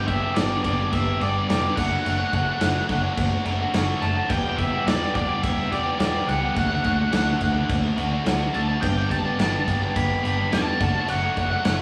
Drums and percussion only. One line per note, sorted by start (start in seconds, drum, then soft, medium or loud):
0.08 kick medium
0.08 crash medium
0.36 snare loud
0.36 crash medium
0.65 kick medium
0.65 crash medium
0.93 kick loud
0.93 crash medium
1.21 crash medium
1.50 snare loud
1.50 crash medium
1.77 kick loud
1.77 crash loud
2.06 crash medium
2.33 kick medium
2.33 crash medium
2.61 snare loud
2.61 crash medium
2.89 kick medium
2.89 crash medium
3.17 kick loud
3.17 crash medium
3.46 crash medium
3.74 snare loud
3.74 crash medium
4.02 crash medium
4.30 kick loud
4.30 crash medium
4.58 kick medium
4.58 crash medium
4.87 snare loud
4.87 crash medium
5.15 kick medium
5.15 crash medium
5.44 kick loud
5.44 crash medium
5.72 crash medium
6.00 snare loud
6.00 crash medium
6.29 crash medium
6.56 kick loud
6.56 crash medium
6.84 kick medium
6.84 crash medium
7.12 snare loud
7.12 crash medium
7.41 kick medium
7.41 crash medium
7.69 kick loud
7.69 crash medium
7.98 crash medium
8.26 snare loud
8.26 crash medium
8.54 crash medium
8.82 kick loud
8.82 crash medium
9.11 kick medium
9.11 crash medium
9.39 snare loud
9.39 crash medium
9.68 kick medium
9.68 crash medium
9.96 kick loud
9.96 crash medium
10.25 crash medium
10.52 snare loud
10.52 crash medium
10.81 kick loud
10.81 crash medium
11.08 crash medium
11.37 kick medium
11.37 crash medium
11.65 snare loud
11.65 crash medium